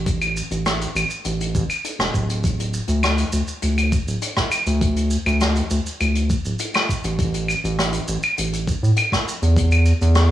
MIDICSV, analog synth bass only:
0, 0, Header, 1, 2, 480
1, 0, Start_track
1, 0, Tempo, 594059
1, 50, Time_signature, 4, 2, 24, 8
1, 8331, End_track
2, 0, Start_track
2, 0, Title_t, "Analog synth bass"
2, 0, Program_c, 0, 38
2, 0, Note_on_c, 0, 33, 84
2, 338, Note_off_c, 0, 33, 0
2, 412, Note_on_c, 0, 33, 100
2, 699, Note_off_c, 0, 33, 0
2, 771, Note_on_c, 0, 33, 106
2, 847, Note_off_c, 0, 33, 0
2, 1013, Note_on_c, 0, 33, 81
2, 1247, Note_off_c, 0, 33, 0
2, 1252, Note_on_c, 0, 33, 102
2, 1327, Note_off_c, 0, 33, 0
2, 1611, Note_on_c, 0, 28, 100
2, 1685, Note_off_c, 0, 28, 0
2, 1728, Note_on_c, 0, 26, 82
2, 2258, Note_off_c, 0, 26, 0
2, 2330, Note_on_c, 0, 38, 104
2, 2618, Note_off_c, 0, 38, 0
2, 2690, Note_on_c, 0, 38, 100
2, 2766, Note_off_c, 0, 38, 0
2, 2933, Note_on_c, 0, 38, 75
2, 3220, Note_off_c, 0, 38, 0
2, 3290, Note_on_c, 0, 26, 80
2, 3365, Note_off_c, 0, 26, 0
2, 3771, Note_on_c, 0, 38, 83
2, 4179, Note_off_c, 0, 38, 0
2, 4251, Note_on_c, 0, 38, 103
2, 4539, Note_off_c, 0, 38, 0
2, 4611, Note_on_c, 0, 38, 103
2, 4687, Note_off_c, 0, 38, 0
2, 4855, Note_on_c, 0, 38, 77
2, 5141, Note_off_c, 0, 38, 0
2, 5215, Note_on_c, 0, 26, 79
2, 5287, Note_off_c, 0, 26, 0
2, 5692, Note_on_c, 0, 33, 82
2, 6099, Note_off_c, 0, 33, 0
2, 6175, Note_on_c, 0, 33, 108
2, 6461, Note_off_c, 0, 33, 0
2, 6533, Note_on_c, 0, 33, 96
2, 6608, Note_off_c, 0, 33, 0
2, 6775, Note_on_c, 0, 33, 80
2, 7061, Note_off_c, 0, 33, 0
2, 7132, Note_on_c, 0, 45, 79
2, 7206, Note_off_c, 0, 45, 0
2, 7614, Note_on_c, 0, 40, 85
2, 8020, Note_off_c, 0, 40, 0
2, 8092, Note_on_c, 0, 40, 107
2, 8331, Note_off_c, 0, 40, 0
2, 8331, End_track
0, 0, End_of_file